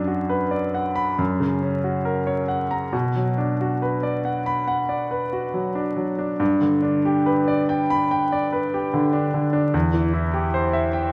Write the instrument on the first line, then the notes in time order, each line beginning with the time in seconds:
grand piano
Already playing: F#2 F#3 D4
0.07 F#4
0.29 B4
0.51 D5
0.75 F#5
0.96 B5
1.19 F#2
1.40 C#3
1.62 C#4
1.84 F#4
2.05 A#4
2.27 C#5
2.48 F#5
2.71 A#5
2.93 B2
3.16 F#3
3.38 D4
3.61 F#4
3.82 B4
4.03 D5
4.25 F#5
4.46 B5
4.68 F#5
4.89 D5
5.11 B4
5.33 F#4
5.54 F#3
5.75 D4
5.97 F#3
6.19 D4
6.40 G2
6.61 D3
6.82 D4
7.05 G4
7.26 B4
7.48 D5
7.69 G5
7.90 B5
8.11 G5
8.32 D5
8.53 B4
8.74 G4
8.94 D3
9.13 D4
9.34 D3
9.53 D4
9.74 E2
9.94 E3
10.14 E4
10.34 G4
10.54 C5
10.73 E5
10.93 G5